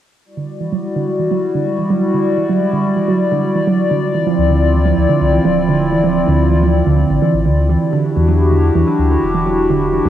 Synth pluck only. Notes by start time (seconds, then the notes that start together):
0.37 D3
0.60 E3
0.72 F#3
0.96 D3
1.19 E3
1.31 F#3
1.55 D3
1.78 E3
1.90 F#3
2.14 D3
2.38 E3
2.49 F#3
2.73 D3
2.97 E3
3.08 F#3
3.32 D3
3.56 E3
3.68 F#3
3.91 D3
4.15 E3
4.27 F3
4.50 D3
4.74 E3
4.86 F3
5.09 D3
5.33 E3
5.45 F3
5.68 D3
5.92 E3
6.04 F3
6.27 D3
6.51 E3
6.63 F3
6.86 D3
7.10 D3
7.22 E3
7.46 D3
7.69 E3
7.93 D3
8.16 E3
8.28 F#3
8.52 D3
8.75 E3
8.87 F#3
9.11 D3
9.35 E3
9.46 F#3
9.70 D3
9.94 E3
10.05 F#3